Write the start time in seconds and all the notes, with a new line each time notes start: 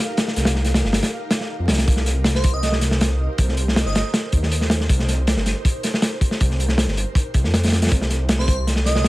Already playing: D#4 G4 A#4 F5
0.17 snare, closed hi-hat
0.28 snare
0.36 C2, snare, closed hi-hat
0.45 snare, closed hi-hat
0.55 snare
0.64 snare, closed hi-hat
0.74 snare, closed hi-hat
0.84 G1, snare
0.93 snare, closed hi-hat
1.03 snare, closed hi-hat
1.31 snare, closed hi-hat
1.40 snare
1.59 F2
1.68 C2, snare, closed hi-hat
1.73 snare, closed hi-hat
1.78 snare, closed hi-hat
1.88 C2 C5, kick, closed hi-hat
1.96 snare
2.06 snare, closed hi-hat
2.24 snare, closed hi-hat
2.35 C5, snare
2.43 kick, closed hi-hat
2.54 D#5
2.63 D#5, snare, closed hi-hat
2.72 snare
2.81 snare, closed hi-hat
2.91 snare
3.01 snare, closed hi-hat
3.38 C2, kick, closed hi-hat
3.48 snare
3.57 closed hi-hat
3.68 snare
3.76 snare, closed hi-hat
3.85 G1 D#5, snare
3.95 D#5, snare, closed hi-hat
4.14 snare, closed hi-hat
4.32 D#2, kick, closed hi-hat
4.43 snare
4.52 closed hi-hat
4.61 snare
4.70 snare, closed hi-hat
4.80 snare
4.89 C2, kick, closed hi-hat
4.99 snare
5.08 snare, closed hi-hat
5.27 snare, closed hi-hat
5.37 G1, snare
5.46 snare, closed hi-hat
5.65 kick, closed hi-hat
5.83 snare, closed hi-hat
5.94 snare
6.02 snare, closed hi-hat
6.21 kick, closed hi-hat
6.31 snare
6.41 C2, kick, closed hi-hat
6.50 snare
6.60 closed hi-hat
6.69 snare
6.78 snare, closed hi-hat
6.88 G1, snare
6.97 closed hi-hat
7.15 kick, closed hi-hat
7.34 C2, kick, closed hi-hat
7.44 F2, snare
7.54 snare, closed hi-hat
7.63 snare, closed hi-hat
7.68 snare, closed hi-hat
7.72 snare, closed hi-hat
7.82 snare, closed hi-hat
7.87 snare, closed hi-hat
7.91 C2 D5, kick, closed hi-hat
8.01 snare
8.10 snare, closed hi-hat
8.29 snare, closed hi-hat
8.39 C5, snare
8.48 kick, closed hi-hat
8.67 snare, closed hi-hat
8.76 snare
8.85 D#5, snare, closed hi-hat
8.95 snare
9.04 snare